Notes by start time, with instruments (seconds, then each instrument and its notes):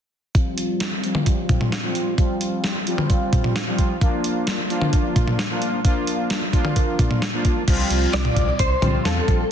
0.35 analog polysynth F3 G3 C4 F4, kick, closed hi-hat
0.58 closed hi-hat
0.80 snare, closed hi-hat
1.03 analog polysynth F3 G3 C4 F4, closed hi-hat
1.15 mid tom
1.26 kick, closed hi-hat
1.49 kick, closed hi-hat, mid tom
1.61 mid tom
1.72 snare, closed hi-hat
1.84 analog polysynth F3 G3 C4 F4
1.95 closed hi-hat
2.18 analog polysynth F3 G3 C4 F4, kick, closed hi-hat
2.41 closed hi-hat
2.64 snare, closed hi-hat
2.87 analog polysynth F3 G3 C4 F4, closed hi-hat
2.98 mid tom
3.10 kick, closed hi-hat
3.33 kick, closed hi-hat, mid tom
3.44 mid tom
3.56 snare, closed hi-hat
3.67 analog polysynth F3 G3 C4 F4
3.79 kick, closed hi-hat
4.01 analog polysynth F3 A#3 D4 F4, kick, closed hi-hat
4.24 closed hi-hat
4.47 snare, closed hi-hat
4.70 analog polysynth F3 A#3 D4 F4, closed hi-hat
4.82 mid tom
4.93 kick, closed hi-hat
5.16 kick, closed hi-hat, mid tom
5.28 mid tom
5.39 snare, closed hi-hat
5.50 analog polysynth F3 A#3 D4 F4
5.62 closed hi-hat
5.84 analog polysynth F3 A#3 D4 F4, kick, closed hi-hat
6.07 closed hi-hat
6.30 snare, closed hi-hat
6.53 analog polysynth F3 A#3 D4 F4, kick, closed hi-hat
6.65 mid tom
6.76 kick, closed hi-hat
6.99 kick, closed hi-hat, mid tom
7.11 mid tom
7.22 snare, closed hi-hat
7.33 analog polysynth F3 A#3 D4 F4
7.45 kick, closed hi-hat
7.68 analog synth bass C2, analog polysynth F3 G3 C4 F4, kick, closed hi-hat, crash
7.91 analog synth bass C2, closed hi-hat
8.13 analog synth bass C2, clean electric guitar D5, snare, closed hi-hat
8.25 mid tom
8.36 analog synth bass C2, kick, closed hi-hat
8.59 analog synth bass C2, clean electric guitar C5, kick, closed hi-hat
8.82 analog synth bass C2, analog polysynth F3 G3 C4 F4, closed hi-hat, mid tom
9.05 analog synth bass E2, clean electric guitar A4, snare, closed hi-hat
9.28 analog synth bass A#1, kick, closed hi-hat